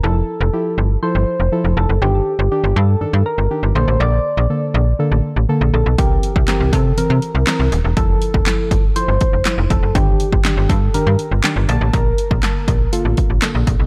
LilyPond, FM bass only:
\new Staff \with { instrumentName = "FM bass" } { \clef bass \time 4/4 \key f \major \tempo 4 = 121 f,,8 r16 f,,16 r8 g,,8 r16 g,,16 r16 f,,16 r16 f,,16 f,,16 ges,,16 | g,,8 r16 g,,16 r16 g,,16 g,8 g,16 g,16 r16 g,,16 r16 g,,16 bes,,16 a,,16 | bes,,8 r16 bes,,16 r8 bes,,8 r16 a,,16 r16 a,,16 r16 bes,,16 bes,,16 b,,16 | c,8 r16 c,16 r16 c,16 c8 c16 c16 r16 c,16 r16 c,16 ees,,16 e,,16 |
f,,8 r16 f,,16 r8 g,,8 r16 g,,16 r16 f,,16 r16 f,,16 f,,16 ges,,16 | g,,8 r16 g,,16 r16 g,,16 g,8 g,16 g,16 r16 g,,16 r16 g,,16 bes,,16 a,,16 | bes,,8 r16 bes,,16 r8 bes,,8 r16 a,,16 r16 a,,16 r16 bes,,16 bes,,16 b,,16 | }